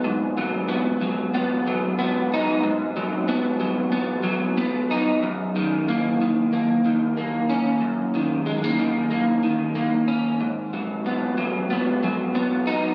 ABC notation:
X:1
M:4/4
L:1/16
Q:"Swing 16ths" 1/4=93
K:G#dor
V:1 name="Clean electric guitar" clef=bass
G,,2 F,2 B,2 F,2 B,2 F,2 B,2 D2 | G,,2 F,2 B,2 F,2 B,2 F,2 B,2 D2 | F,,2 D,2 A,2 D,2 A,2 D,2 A,2 C2 | F,,2 D,2 G, A, D,2 A,2 D,2 A,2 C2 |
G,,2 F,2 B,2 F,2 B,2 F,2 B,2 D2 |]